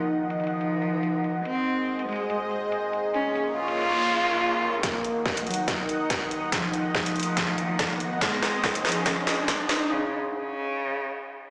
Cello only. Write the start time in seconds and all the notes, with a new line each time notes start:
0.19 F3
1.45 C4
2.09 G#3
3.14 C#4
3.57 F4
4.83 A#3
5.47 F#3
6.52 F3
6.95 F3
8.21 G#3
8.85 F3
9.90 C#3
10.33 C#3